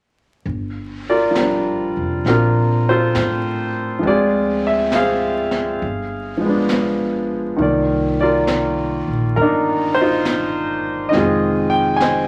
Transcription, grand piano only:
0, 0, Header, 1, 2, 480
1, 0, Start_track
1, 0, Key_signature, -2, "minor"
1, 0, Tempo, 892857
1, 247, Time_signature, 4, 2, 24, 8
1, 3126, Tempo, 884956
1, 6631, End_track
2, 0, Start_track
2, 0, Title_t, "Grand piano"
2, 0, Program_c, 0, 0
2, 364, Control_c, 0, 64, 127
2, 589, Note_on_c, 0, 74, 69
2, 590, Note_on_c, 0, 70, 49
2, 595, Note_on_c, 0, 65, 50
2, 702, Note_on_c, 0, 53, 43
2, 720, Note_on_c, 0, 55, 38
2, 761, Note_on_c, 0, 62, 44
2, 1213, Note_on_c, 0, 60, 35
2, 1216, Note_off_c, 0, 62, 0
2, 1219, Note_off_c, 0, 70, 0
2, 1224, Note_on_c, 0, 62, 41
2, 1225, Note_off_c, 0, 65, 0
2, 1227, Note_on_c, 0, 70, 63
2, 1233, Note_on_c, 0, 65, 46
2, 1235, Note_off_c, 0, 74, 0
2, 1553, Note_off_c, 0, 65, 0
2, 1554, Note_on_c, 0, 72, 77
2, 1556, Note_off_c, 0, 70, 0
2, 1561, Note_on_c, 0, 65, 54
2, 1563, Note_on_c, 0, 69, 53
2, 2137, Note_off_c, 0, 53, 0
2, 2145, Note_on_c, 0, 53, 50
2, 2160, Note_off_c, 0, 65, 0
2, 2161, Note_off_c, 0, 69, 0
2, 2162, Note_on_c, 0, 56, 47
2, 2166, Note_off_c, 0, 55, 0
2, 2172, Note_off_c, 0, 60, 0
2, 2176, Control_c, 0, 64, 0
2, 2178, Note_off_c, 0, 62, 0
2, 2182, Note_on_c, 0, 60, 46
2, 2187, Note_on_c, 0, 68, 57
2, 2189, Note_on_c, 0, 74, 75
2, 2194, Note_on_c, 0, 65, 54
2, 2197, Note_off_c, 0, 72, 0
2, 2280, Control_c, 0, 64, 127
2, 2485, Note_off_c, 0, 74, 0
2, 2509, Note_on_c, 0, 76, 76
2, 2645, Note_off_c, 0, 76, 0
2, 2654, Note_off_c, 0, 68, 0
2, 2661, Note_on_c, 0, 77, 70
2, 2662, Note_on_c, 0, 68, 52
2, 2666, Note_on_c, 0, 72, 51
2, 3114, Note_off_c, 0, 53, 0
2, 3114, Note_off_c, 0, 72, 0
2, 3117, Note_off_c, 0, 65, 0
2, 3123, Note_off_c, 0, 56, 0
2, 3133, Note_off_c, 0, 60, 0
2, 3134, Control_c, 0, 64, 0
2, 3228, Control_c, 0, 64, 127
2, 3429, Note_on_c, 0, 53, 49
2, 3448, Note_on_c, 0, 56, 42
2, 3471, Note_on_c, 0, 59, 41
2, 3493, Note_on_c, 0, 62, 49
2, 3921, Note_off_c, 0, 77, 0
2, 3922, Note_off_c, 0, 68, 0
2, 4075, Note_on_c, 0, 51, 45
2, 4076, Note_off_c, 0, 53, 0
2, 4084, Note_on_c, 0, 53, 41
2, 4085, Note_off_c, 0, 56, 0
2, 4096, Note_on_c, 0, 58, 44
2, 4097, Note_off_c, 0, 59, 0
2, 4097, Control_c, 0, 64, 0
2, 4104, Note_on_c, 0, 74, 50
2, 4108, Note_off_c, 0, 62, 0
2, 4204, Control_c, 0, 64, 127
2, 4415, Note_off_c, 0, 74, 0
2, 4423, Note_on_c, 0, 74, 67
2, 4430, Note_on_c, 0, 70, 51
2, 4435, Note_on_c, 0, 65, 49
2, 5042, Note_off_c, 0, 70, 0
2, 5050, Note_on_c, 0, 70, 72
2, 5069, Note_off_c, 0, 74, 0
2, 5078, Note_on_c, 0, 63, 50
2, 5079, Note_on_c, 0, 62, 52
2, 5362, Note_off_c, 0, 65, 0
2, 5366, Note_on_c, 0, 72, 84
2, 5386, Note_off_c, 0, 70, 0
2, 5395, Note_off_c, 0, 63, 0
2, 5403, Note_on_c, 0, 63, 51
2, 5403, Note_on_c, 0, 65, 56
2, 5979, Note_off_c, 0, 72, 0
2, 5987, Note_on_c, 0, 75, 74
2, 5988, Note_off_c, 0, 51, 0
2, 5994, Note_off_c, 0, 53, 0
2, 5996, Note_on_c, 0, 51, 43
2, 5998, Note_off_c, 0, 63, 0
2, 5998, Note_off_c, 0, 65, 0
2, 5999, Note_off_c, 0, 62, 0
2, 6002, Note_on_c, 0, 53, 39
2, 6009, Note_off_c, 0, 58, 0
2, 6010, Note_on_c, 0, 56, 39
2, 6013, Control_c, 0, 64, 0
2, 6019, Note_on_c, 0, 60, 46
2, 6027, Note_on_c, 0, 68, 55
2, 6030, Note_on_c, 0, 65, 56
2, 6096, Control_c, 0, 64, 127
2, 6317, Note_on_c, 0, 79, 82
2, 6334, Note_off_c, 0, 75, 0
2, 6462, Note_on_c, 0, 80, 69
2, 6482, Note_off_c, 0, 79, 0
2, 6492, Note_on_c, 0, 72, 50
2, 6492, Note_on_c, 0, 75, 48
2, 6631, Note_off_c, 0, 51, 0
2, 6631, Note_off_c, 0, 53, 0
2, 6631, Note_off_c, 0, 56, 0
2, 6631, Note_off_c, 0, 60, 0
2, 6631, Note_off_c, 0, 65, 0
2, 6631, Note_off_c, 0, 68, 0
2, 6631, Note_off_c, 0, 72, 0
2, 6631, Note_off_c, 0, 75, 0
2, 6631, Note_off_c, 0, 80, 0
2, 6631, End_track
0, 0, End_of_file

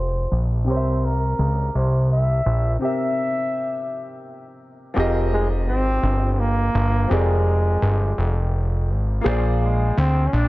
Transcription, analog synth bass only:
0, 0, Header, 1, 2, 480
1, 0, Start_track
1, 0, Tempo, 714286
1, 444, Time_signature, 6, 3, 24, 8
1, 7043, End_track
2, 0, Start_track
2, 0, Title_t, "Analog synth bass"
2, 0, Program_c, 0, 38
2, 0, Note_on_c, 0, 29, 85
2, 181, Note_off_c, 0, 29, 0
2, 213, Note_on_c, 0, 34, 78
2, 452, Note_on_c, 0, 36, 98
2, 462, Note_off_c, 0, 34, 0
2, 901, Note_off_c, 0, 36, 0
2, 934, Note_on_c, 0, 37, 81
2, 1145, Note_off_c, 0, 37, 0
2, 1176, Note_on_c, 0, 36, 95
2, 1623, Note_off_c, 0, 36, 0
2, 1653, Note_on_c, 0, 34, 83
2, 1865, Note_off_c, 0, 34, 0
2, 3336, Note_on_c, 0, 29, 104
2, 3815, Note_on_c, 0, 32, 100
2, 3825, Note_off_c, 0, 29, 0
2, 4026, Note_off_c, 0, 32, 0
2, 4054, Note_on_c, 0, 31, 93
2, 4502, Note_off_c, 0, 31, 0
2, 4536, Note_on_c, 0, 31, 97
2, 4746, Note_off_c, 0, 31, 0
2, 4776, Note_on_c, 0, 29, 111
2, 5223, Note_off_c, 0, 29, 0
2, 5256, Note_on_c, 0, 31, 98
2, 5467, Note_off_c, 0, 31, 0
2, 5498, Note_on_c, 0, 29, 95
2, 5981, Note_on_c, 0, 32, 97
2, 5991, Note_off_c, 0, 29, 0
2, 6189, Note_off_c, 0, 32, 0
2, 6220, Note_on_c, 0, 34, 112
2, 6665, Note_off_c, 0, 34, 0
2, 6703, Note_on_c, 0, 38, 97
2, 6910, Note_off_c, 0, 38, 0
2, 6942, Note_on_c, 0, 34, 100
2, 7043, Note_off_c, 0, 34, 0
2, 7043, End_track
0, 0, End_of_file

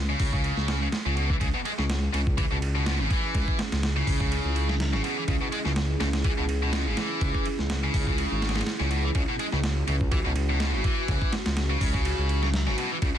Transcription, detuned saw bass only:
0, 0, Header, 1, 2, 480
1, 0, Start_track
1, 0, Key_signature, 4, "minor"
1, 0, Tempo, 483871
1, 1401, Time_signature, 4, 2, 24, 8
1, 13076, End_track
2, 0, Start_track
2, 0, Title_t, "Detuned saw bass"
2, 0, Program_c, 0, 39
2, 0, Note_on_c, 0, 37, 94
2, 152, Note_off_c, 0, 37, 0
2, 198, Note_on_c, 0, 37, 80
2, 514, Note_off_c, 0, 37, 0
2, 568, Note_on_c, 0, 37, 102
2, 872, Note_off_c, 0, 37, 0
2, 1049, Note_on_c, 0, 37, 89
2, 1353, Note_off_c, 0, 37, 0
2, 1400, Note_on_c, 0, 37, 96
2, 1497, Note_off_c, 0, 37, 0
2, 1772, Note_on_c, 0, 37, 98
2, 2074, Note_off_c, 0, 37, 0
2, 2123, Note_on_c, 0, 37, 79
2, 2437, Note_off_c, 0, 37, 0
2, 2491, Note_on_c, 0, 37, 100
2, 2973, Note_on_c, 0, 32, 82
2, 2988, Note_off_c, 0, 37, 0
2, 3052, Note_off_c, 0, 32, 0
2, 3320, Note_on_c, 0, 37, 96
2, 3417, Note_off_c, 0, 37, 0
2, 3695, Note_on_c, 0, 37, 95
2, 3996, Note_off_c, 0, 37, 0
2, 4042, Note_on_c, 0, 37, 80
2, 4356, Note_off_c, 0, 37, 0
2, 4415, Note_on_c, 0, 37, 104
2, 4894, Note_on_c, 0, 32, 82
2, 4909, Note_off_c, 0, 37, 0
2, 4973, Note_off_c, 0, 32, 0
2, 5238, Note_on_c, 0, 37, 100
2, 5336, Note_off_c, 0, 37, 0
2, 5611, Note_on_c, 0, 37, 92
2, 5914, Note_off_c, 0, 37, 0
2, 5960, Note_on_c, 0, 37, 81
2, 6276, Note_off_c, 0, 37, 0
2, 6334, Note_on_c, 0, 37, 100
2, 6810, Note_on_c, 0, 32, 83
2, 6825, Note_off_c, 0, 37, 0
2, 6891, Note_off_c, 0, 32, 0
2, 7158, Note_on_c, 0, 37, 100
2, 7255, Note_off_c, 0, 37, 0
2, 7534, Note_on_c, 0, 37, 93
2, 7835, Note_off_c, 0, 37, 0
2, 7879, Note_on_c, 0, 37, 80
2, 8195, Note_off_c, 0, 37, 0
2, 8250, Note_on_c, 0, 32, 90
2, 8553, Note_off_c, 0, 32, 0
2, 8734, Note_on_c, 0, 37, 78
2, 9036, Note_off_c, 0, 37, 0
2, 9078, Note_on_c, 0, 37, 102
2, 9176, Note_off_c, 0, 37, 0
2, 9453, Note_on_c, 0, 37, 95
2, 9755, Note_off_c, 0, 37, 0
2, 9802, Note_on_c, 0, 37, 82
2, 10116, Note_off_c, 0, 37, 0
2, 10175, Note_on_c, 0, 37, 103
2, 10651, Note_on_c, 0, 32, 79
2, 10666, Note_off_c, 0, 37, 0
2, 10731, Note_off_c, 0, 32, 0
2, 10998, Note_on_c, 0, 37, 100
2, 11096, Note_off_c, 0, 37, 0
2, 11372, Note_on_c, 0, 37, 98
2, 11674, Note_off_c, 0, 37, 0
2, 11718, Note_on_c, 0, 37, 79
2, 12035, Note_off_c, 0, 37, 0
2, 12091, Note_on_c, 0, 37, 103
2, 12575, Note_on_c, 0, 32, 84
2, 12590, Note_off_c, 0, 37, 0
2, 12653, Note_off_c, 0, 32, 0
2, 12920, Note_on_c, 0, 37, 101
2, 13017, Note_off_c, 0, 37, 0
2, 13076, End_track
0, 0, End_of_file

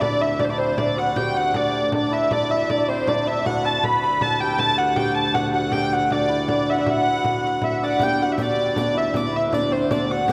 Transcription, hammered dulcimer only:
0, 0, Header, 1, 2, 480
1, 0, Start_track
1, 0, Tempo, 380228
1, 24, Time_signature, 3, 2, 24, 8
1, 13034, End_track
2, 0, Start_track
2, 0, Title_t, "Hammered dulcimer"
2, 0, Program_c, 0, 15
2, 0, Note_on_c, 0, 60, 68
2, 0, Note_on_c, 0, 64, 72
2, 0, Note_on_c, 0, 66, 66
2, 0, Note_on_c, 0, 69, 84
2, 13, Note_on_c, 0, 62, 71
2, 251, Note_off_c, 0, 64, 0
2, 256, Note_on_c, 0, 64, 70
2, 495, Note_off_c, 0, 62, 0
2, 501, Note_on_c, 0, 62, 70
2, 618, Note_off_c, 0, 62, 0
2, 623, Note_on_c, 0, 62, 64
2, 742, Note_off_c, 0, 60, 0
2, 747, Note_on_c, 0, 60, 67
2, 822, Note_off_c, 0, 69, 0
2, 992, Note_off_c, 0, 62, 0
2, 997, Note_on_c, 0, 62, 70
2, 1214, Note_off_c, 0, 66, 0
2, 1219, Note_on_c, 0, 66, 76
2, 1473, Note_on_c, 0, 67, 78
2, 1549, Note_off_c, 0, 66, 0
2, 1693, Note_on_c, 0, 66, 74
2, 1768, Note_off_c, 0, 67, 0
2, 1937, Note_off_c, 0, 62, 0
2, 1942, Note_on_c, 0, 62, 78
2, 2427, Note_off_c, 0, 62, 0
2, 2432, Note_on_c, 0, 62, 74
2, 2659, Note_off_c, 0, 64, 0
2, 2664, Note_on_c, 0, 64, 70
2, 2916, Note_off_c, 0, 62, 0
2, 2921, Note_on_c, 0, 62, 73
2, 3151, Note_off_c, 0, 64, 0
2, 3157, Note_on_c, 0, 64, 71
2, 3417, Note_off_c, 0, 62, 0
2, 3422, Note_on_c, 0, 62, 77
2, 3639, Note_off_c, 0, 60, 0
2, 3644, Note_on_c, 0, 60, 66
2, 3867, Note_off_c, 0, 62, 0
2, 3872, Note_on_c, 0, 62, 74
2, 4105, Note_off_c, 0, 64, 0
2, 4110, Note_on_c, 0, 64, 80
2, 4345, Note_off_c, 0, 66, 0
2, 4350, Note_on_c, 0, 66, 78
2, 4600, Note_on_c, 0, 69, 79
2, 4837, Note_on_c, 0, 71, 89
2, 4913, Note_off_c, 0, 60, 0
2, 5079, Note_off_c, 0, 71, 0
2, 5084, Note_on_c, 0, 71, 80
2, 5321, Note_off_c, 0, 69, 0
2, 5326, Note_on_c, 0, 69, 76
2, 5551, Note_on_c, 0, 67, 77
2, 5627, Note_off_c, 0, 66, 0
2, 5805, Note_off_c, 0, 69, 0
2, 5810, Note_on_c, 0, 69, 84
2, 6038, Note_on_c, 0, 66, 75
2, 6114, Note_off_c, 0, 67, 0
2, 6286, Note_on_c, 0, 67, 81
2, 6362, Note_off_c, 0, 66, 0
2, 6757, Note_on_c, 0, 66, 78
2, 6832, Note_off_c, 0, 67, 0
2, 6987, Note_off_c, 0, 66, 0
2, 6992, Note_on_c, 0, 66, 77
2, 7238, Note_on_c, 0, 67, 76
2, 7314, Note_off_c, 0, 66, 0
2, 7487, Note_on_c, 0, 66, 70
2, 7563, Note_off_c, 0, 67, 0
2, 7715, Note_off_c, 0, 62, 0
2, 7720, Note_on_c, 0, 62, 77
2, 7930, Note_off_c, 0, 64, 0
2, 7935, Note_on_c, 0, 64, 72
2, 8186, Note_off_c, 0, 62, 0
2, 8191, Note_on_c, 0, 62, 68
2, 8533, Note_off_c, 0, 71, 0
2, 8546, Note_off_c, 0, 64, 0
2, 8551, Note_on_c, 0, 64, 73
2, 8654, Note_off_c, 0, 66, 0
2, 8659, Note_on_c, 0, 66, 76
2, 9388, Note_off_c, 0, 66, 0
2, 9393, Note_on_c, 0, 66, 70
2, 9506, Note_off_c, 0, 69, 0
2, 9612, Note_off_c, 0, 64, 0
2, 9617, Note_on_c, 0, 64, 72
2, 9869, Note_off_c, 0, 62, 0
2, 9874, Note_on_c, 0, 62, 58
2, 10092, Note_on_c, 0, 67, 76
2, 10167, Note_off_c, 0, 66, 0
2, 10341, Note_on_c, 0, 66, 67
2, 10417, Note_off_c, 0, 67, 0
2, 10576, Note_off_c, 0, 62, 0
2, 10581, Note_on_c, 0, 62, 69
2, 11038, Note_off_c, 0, 62, 0
2, 11043, Note_on_c, 0, 62, 72
2, 11277, Note_off_c, 0, 64, 0
2, 11282, Note_on_c, 0, 64, 75
2, 11527, Note_off_c, 0, 62, 0
2, 11532, Note_on_c, 0, 62, 72
2, 11769, Note_off_c, 0, 64, 0
2, 11774, Note_on_c, 0, 64, 69
2, 12017, Note_off_c, 0, 62, 0
2, 12022, Note_on_c, 0, 62, 70
2, 12255, Note_on_c, 0, 60, 73
2, 12515, Note_off_c, 0, 62, 0
2, 12520, Note_on_c, 0, 62, 72
2, 12754, Note_off_c, 0, 66, 0
2, 12759, Note_on_c, 0, 66, 79
2, 12987, Note_on_c, 0, 67, 76
2, 13034, Note_off_c, 0, 60, 0
2, 13034, Note_off_c, 0, 62, 0
2, 13034, Note_off_c, 0, 64, 0
2, 13034, Note_off_c, 0, 66, 0
2, 13034, Note_off_c, 0, 67, 0
2, 13034, End_track
0, 0, End_of_file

